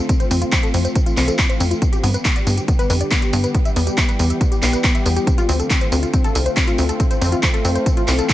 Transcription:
0.09 synth pluck C4, kick, closed hi-hat, tambourine
0.20 synth pluck C5, closed hi-hat, tambourine
0.31 analog synth bass F2, synth pluck C4, open hi-hat, tambourine
0.42 synth pluck F4, closed hi-hat, tambourine
0.52 synth pluck C4, kick, clap, closed hi-hat, tambourine
0.63 synth pluck A4, closed hi-hat, tambourine
0.74 analog synth bass F2, synth pluck C4, open hi-hat, tambourine
0.85 synth pluck C5, closed hi-hat, tambourine
0.95 synth pluck C4, kick, closed hi-hat, tambourine
1.06 synth pluck F4, closed hi-hat, tambourine
1.17 analog synth bass C2, synth pluck C4, clap, open hi-hat, tambourine
1.28 synth pluck A4, closed hi-hat, tambourine
1.39 synth pluck C4, kick, clap, closed hi-hat, tambourine
1.49 synth pluck C5, closed hi-hat, tambourine
1.60 analog synth bass F2, synth pluck C4, open hi-hat, tambourine
1.71 synth pluck F4, closed hi-hat, tambourine
1.82 synth pluck B3, kick, closed hi-hat, tambourine
1.93 synth pluck G4, closed hi-hat, tambourine
2.03 analog synth bass G2, synth pluck B3, open hi-hat, tambourine
2.14 synth pluck B4, closed hi-hat, tambourine
2.25 synth pluck B3, kick, clap, closed hi-hat, tambourine
2.36 synth pluck D5, closed hi-hat, tambourine
2.47 analog synth bass G2, synth pluck B3, open hi-hat, tambourine
2.57 synth pluck G4, closed hi-hat, tambourine
2.68 synth pluck B3, kick, closed hi-hat, tambourine
2.79 synth pluck B4, closed hi-hat, tambourine
2.90 analog synth bass F2, synth pluck B4, open hi-hat, tambourine
3.01 synth pluck D5, closed hi-hat, tambourine
3.11 synth pluck B3, kick, clap, closed hi-hat, tambourine
3.22 synth pluck G4, closed hi-hat, tambourine
3.33 analog synth bass G2, synth pluck B3, open hi-hat, tambourine
3.44 synth pluck B4, closed hi-hat, tambourine
3.55 synth pluck B3, kick, closed hi-hat, tambourine
3.65 synth pluck E5, closed hi-hat, tambourine
3.76 analog synth bass E2, synth pluck B3, open hi-hat, tambourine
3.87 synth pluck G4, closed hi-hat, tambourine
3.98 synth pluck B3, kick, clap, closed hi-hat, tambourine
4.09 synth pluck B4, closed hi-hat, tambourine
4.19 analog synth bass E2, synth pluck B3, open hi-hat, tambourine
4.30 synth pluck E5, closed hi-hat, tambourine
4.41 synth pluck B3, kick, closed hi-hat, tambourine
4.52 synth pluck G4, closed hi-hat, tambourine
4.62 analog synth bass B1, synth pluck B3, clap, open hi-hat, tambourine
4.73 synth pluck B4, closed hi-hat, tambourine
4.84 synth pluck B3, kick, clap, closed hi-hat, tambourine
4.95 synth pluck E5, closed hi-hat, tambourine
5.06 analog synth bass E2, synth pluck B3, open hi-hat, tambourine
5.16 synth pluck G4, closed hi-hat, tambourine
5.27 synth pluck C4, kick, closed hi-hat, tambourine
5.38 synth pluck F4, closed hi-hat, tambourine
5.49 analog synth bass D2, synth pluck C4, open hi-hat, tambourine
5.60 synth pluck A4, closed hi-hat, tambourine
5.70 synth pluck C4, kick, clap, closed hi-hat, tambourine
5.81 synth pluck C5, closed hi-hat, tambourine
5.92 analog synth bass D2, synth pluck C4, open hi-hat, tambourine
6.03 synth pluck F4, closed hi-hat, tambourine
6.14 synth pluck C4, kick, closed hi-hat, tambourine
6.24 synth pluck A4, closed hi-hat, tambourine
6.35 analog synth bass C2, synth pluck A4, open hi-hat, tambourine
6.46 synth pluck C5, closed hi-hat, tambourine
6.57 synth pluck C4, kick, clap, closed hi-hat, tambourine
6.67 synth pluck F4, closed hi-hat, tambourine
6.78 analog synth bass D2, synth pluck C4, open hi-hat, tambourine
6.89 synth pluck A4, closed hi-hat, tambourine
7.00 synth pluck C4, kick, closed hi-hat, tambourine
7.11 synth pluck C5, closed hi-hat, tambourine
7.21 analog synth bass F2, synth pluck C4, open hi-hat, tambourine
7.32 synth pluck F4, closed hi-hat, tambourine
7.43 synth pluck C4, kick, clap, closed hi-hat, tambourine
7.54 synth pluck A4, closed hi-hat, tambourine
7.65 analog synth bass F2, synth pluck C4, open hi-hat, tambourine
7.75 synth pluck C5, closed hi-hat, tambourine
7.86 synth pluck C4, kick, closed hi-hat, tambourine
7.97 synth pluck F4, closed hi-hat, tambourine
8.08 analog synth bass C2, synth pluck C4, clap, open hi-hat, tambourine
8.19 synth pluck A4, closed hi-hat, tambourine
8.29 synth pluck C4, kick, clap, closed hi-hat, tambourine

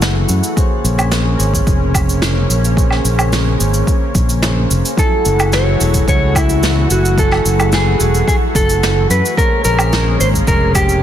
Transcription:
Already playing: fingered electric bass F#1, analog synth pad E3 A3 F#4, synth keys F#3 E4 G#4 A4
0.02 snare, cabasa
0.29 fingered electric bass F#2, cabasa
0.43 cabasa
0.56 analog synth pad C#3 A#3 C#4, synth keys A#3 G#4 C5 C#5, kick, cabasa
0.84 fingered electric bass A#1, cabasa
0.97 synth keys A#3 G#4 C5 C#5, cabasa, low woodblock
1.11 snare, cabasa
1.37 fingered electric bass G#1, synth keys A#3 G#4 C5 C#5, cabasa
1.54 kick, cabasa
1.67 fingered electric bass F1, kick, cabasa
1.94 kick, cabasa, low woodblock
2.09 cabasa
2.22 snare, cabasa
2.49 fingered electric bass A#1, cabasa
2.65 cabasa
2.76 synth keys A#3 G#4 C5 C#5, kick, cabasa
2.91 snare, low woodblock
3.05 fingered electric bass A#1, cabasa
3.18 synth keys A#3 G#4 C5 C#5, cabasa, low woodblock
3.33 snare, cabasa
3.58 fingered electric bass G#1, synth keys A#3 G#4 C5 C#5, cabasa
3.74 cabasa
3.87 kick, cabasa
4.15 fingered electric bass A#1, kick, cabasa
4.29 cabasa
4.42 synth keys A#3 G#4 C5 C#5, snare, cabasa
4.71 fingered electric bass F1, cabasa
4.85 cabasa
4.97 analog synth pad E3 A3 F#4, synth keys F#3 E4 A4 G#5, clean electric guitar A4, kick, cabasa
5.25 fingered electric bass F#1, cabasa
5.38 synth keys F#3 E4 G#4 A4, cabasa, low woodblock
5.52 clean electric guitar C#5, snare, cabasa
5.78 fingered electric bass E1, synth keys F#3 E4 G#4 A4, cabasa
5.94 kick, cabasa
6.08 fingered electric bass C#2, clean electric guitar C#5, kick, cabasa
6.35 clean electric guitar E4, kick, cabasa, low woodblock
6.49 cabasa
6.63 snare, cabasa
6.90 fingered electric bass F#1, clean electric guitar F#4, cabasa
7.05 cabasa
7.17 synth keys F#3 E4 A4 G#5, clean electric guitar A4, kick, cabasa
7.31 snare, low woodblock
7.45 fingered electric bass F#1, cabasa
7.58 synth keys F#3 E4 G#4 A4, cabasa, low woodblock
7.72 clean electric guitar G#4, snare, cabasa
7.98 fingered electric bass E1, synth keys F#3 E4 A4 G#5, cabasa
8.14 cabasa
8.28 clean electric guitar G#4, kick, cabasa
8.55 fingered electric bass F#1, clean electric guitar A4, kick, cabasa
8.69 cabasa
8.83 snare, cabasa
9.10 fingered electric bass F#2, clean electric guitar B4, cabasa
9.25 cabasa
9.37 analog synth pad C#3 G#3 A#3 C#4, synth keys A#3 G#4 C5 C#5, clean electric guitar A#4, kick, cabasa
9.65 fingered electric bass A#1, clean electric guitar A#4, cabasa
9.78 synth keys A#3 G#4 C5 C#5, cabasa, low woodblock
9.93 snare, cabasa
10.18 fingered electric bass G#1, synth keys G#3 A#3 C5 C#5, clean electric guitar C5, cabasa
10.34 kick, cabasa
10.47 fingered electric bass F1, clean electric guitar A#4, kick, cabasa
10.75 clean electric guitar G4, kick, cabasa, low woodblock
10.89 cabasa

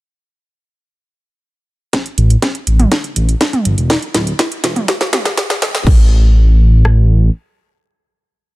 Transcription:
1.93 kick, snare, closed hi-hat
2.06 closed hi-hat
2.18 detuned saw bass A1, closed hi-hat
2.30 closed hi-hat
2.42 kick, snare, closed hi-hat
2.55 closed hi-hat
2.67 detuned saw bass A1, closed hi-hat
2.79 closed hi-hat, mid tom
2.92 kick, snare, closed hi-hat
3.04 closed hi-hat
3.16 detuned saw bass A1, closed hi-hat
3.29 closed hi-hat
3.41 kick, snare, closed hi-hat
3.53 closed hi-hat, mid tom
3.65 detuned saw bass G1, closed hi-hat
3.78 detuned saw bass E1, closed hi-hat
3.90 kick, snare, closed hi-hat
4.02 closed hi-hat
4.14 detuned saw bass D1, snare, closed hi-hat
4.27 closed hi-hat
4.39 kick, snare, closed hi-hat
4.52 closed hi-hat
4.64 detuned saw bass E1, snare, closed hi-hat
4.76 closed hi-hat, mid tom
4.88 kick, snare, closed hi-hat
5.01 snare, closed hi-hat
5.13 detuned saw bass F1, snare, closed hi-hat, mid tom
5.25 snare, closed hi-hat
5.37 kick, snare, closed hi-hat
5.50 snare, closed hi-hat
5.62 detuned saw bass F1, snare, closed hi-hat
5.75 detuned saw bass F1, snare, closed hi-hat
5.87 detuned saw bass A1, kick, crash
6.85 cross-stick

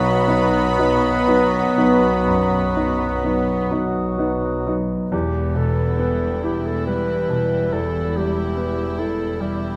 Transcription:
Already playing: double bass section B1, grand piano B1 F#3 B3 D#4, trombone section D#3 B3, bassoon F#3, viola section B3, french horn section B3, cello section B3, trumpet section F#4, violin section B4 B5, clarinet B4, flute D#6
0.28 grand piano F#3 B3 D#4
0.79 grand piano F#3 B3 D#4
1.27 grand piano F#3 B3 D#4
1.78 grand piano F#3 B3 D#4
2.27 grand piano F#2
2.76 grand piano F#3 B3 D#4
3.24 grand piano F#3 B3 D#4
3.71 grand piano F#3 B3 D#4
4.18 grand piano F#3 B3 D#4
4.67 grand piano F#3 B3 D#4
5.12 double bass section E1, grand piano E2, cello section E2, violin section B3, clarinet G4
5.55 grand piano B2, viola section G3 E4, clarinet A4, violin section G5
5.99 grand piano B3
6.43 double bass section E1, cello section E2, grand piano E4, violin section E4, clarinet G4
6.67 clarinet A4
6.87 grand piano G3, viola section G3 E4, clarinet B4, violin section G5
7.29 grand piano B2
7.72 double bass section E1, grand piano E2, cello section E2, violin section E4, clarinet A4
8.15 viola section G3 E4, grand piano G3, clarinet G4, violin section G5
8.57 grand piano B3
8.98 double bass section E1, cello section E2, grand piano E4, clarinet A4
9.40 viola section G3 E4, grand piano G3, clarinet G4, violin section G5

